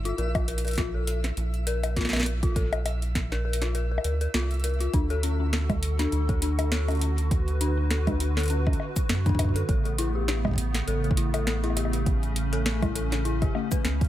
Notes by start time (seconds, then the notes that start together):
Already playing: G1 E4 E5
0.05 F4, closed hi-hat
0.18 A#1 A#4, closed hi-hat
0.35 F4, kick, closed hi-hat, high bongo
0.48 A#4, closed hi-hat
0.58 closed hi-hat
0.65 A#4, closed hi-hat
0.67 closed hi-hat
0.71 closed hi-hat
0.73 closed hi-hat
0.76 kick, snare, closed hi-hat
0.78 F4, closed hi-hat
0.94 A4
1.07 A4, closed hi-hat
1.24 snare, closed hi-hat
1.37 A#1, closed hi-hat
1.54 closed hi-hat
1.67 A#4, closed hi-hat
1.83 A#4, closed hi-hat, high bongo
1.96 F4, kick, snare, closed hi-hat
2.01 snare
2.05 snare
2.09 snare
2.13 A#4, snare, closed hi-hat, high bongo
2.16 snare
2.20 snare
2.23 A#4, snare, closed hi-hat
2.43 F4, kick, closed hi-hat
2.56 A4, kick, closed hi-hat
2.73 A4, closed hi-hat, high bongo
2.86 closed hi-hat, high bongo
3.02 closed hi-hat
3.15 kick, snare, closed hi-hat
3.32 A#4, snare, closed hi-hat
3.45 A#4
3.53 closed hi-hat
3.62 F4, snare, closed hi-hat
3.75 A#4, closed hi-hat
3.91 A#4
3.98 high bongo
4.04 D2 A#4, closed hi-hat
4.21 A#4, closed hi-hat
4.34 C2 F4, snare, closed hi-hat
4.51 closed hi-hat
4.54 closed hi-hat
4.59 closed hi-hat
4.64 A#4, closed hi-hat
4.69 closed hi-hat
4.74 closed hi-hat
4.80 F4, closed hi-hat
4.93 D2 D3 D4 F#4 A4, kick, closed hi-hat
5.10 A4, closed hi-hat
5.23 C#4, closed hi-hat
5.40 C#4
5.53 snare, closed hi-hat
5.70 kick, closed hi-hat, high bongo, low conga
5.83 closed hi-hat
5.99 D4, snare, closed hi-hat
6.12 D2 D4, closed hi-hat
6.29 A4, kick, closed hi-hat
6.42 D4, closed hi-hat
6.59 D4, closed hi-hat, high bongo
6.72 A4, snare, closed hi-hat
6.88 C#4, closed hi-hat, high bongo
6.91 closed hi-hat
6.95 closed hi-hat
6.97 closed hi-hat
6.99 closed hi-hat
7.01 C#4, closed hi-hat
7.18 closed hi-hat
7.31 B4, kick, closed hi-hat
7.48 closed hi-hat
7.61 D4, closed hi-hat
7.77 D4
7.91 A4, snare, closed hi-hat
8.07 D4, kick, closed hi-hat, high bongo, low conga
8.20 D4, closed hi-hat
8.37 A4, snare, closed hi-hat
8.39 closed hi-hat
8.43 closed hi-hat
8.46 closed hi-hat
8.48 C#4, closed hi-hat
8.50 closed hi-hat
8.67 C#4, kick, high bongo
8.73 closed hi-hat
8.80 high bongo
8.96 kick, closed hi-hat, cabasa
9.09 F#2, snare, closed hi-hat
9.26 D4, kick, closed hi-hat
9.29 kick
9.35 kick
9.39 D4, kick, closed hi-hat, high bongo
9.45 kick
9.49 kick
9.56 A4, closed hi-hat
9.69 A1 C#3 A3 B3 A4, kick, closed hi-hat
9.85 A4, closed hi-hat
9.98 E4, closed hi-hat
10.15 G4
10.28 G4, snare, closed hi-hat
10.45 kick, high bongo, low conga
10.47 kick
10.51 kick
10.53 kick
10.56 kick, closed hi-hat
10.74 snare, closed hi-hat
10.88 A1 A4, closed hi-hat
11.04 A4, closed hi-hat
11.11 kick
11.17 E4, closed hi-hat
11.34 A4, closed hi-hat, high bongo
11.47 A4, snare, closed hi-hat
11.64 E4, closed hi-hat, high bongo
11.70 high bongo
11.77 G4, closed hi-hat, high bongo
11.85 high bongo
11.93 G4, closed hi-hat
12.06 C#4, kick, closed hi-hat
12.23 closed hi-hat
12.36 closed hi-hat
12.53 A4, closed hi-hat
12.66 A4, snare, closed hi-hat
12.82 E4, kick, closed hi-hat, high bongo, low conga
12.95 A4, closed hi-hat
13.12 A4, snare, closed hi-hat
13.25 E4, closed hi-hat
13.42 G4, kick, closed hi-hat, high bongo
13.55 A3, high bongo
13.71 B4, kick, closed hi-hat, cabasa
13.85 C#2, snare, closed hi-hat
14.01 kick, closed hi-hat
14.04 closed hi-hat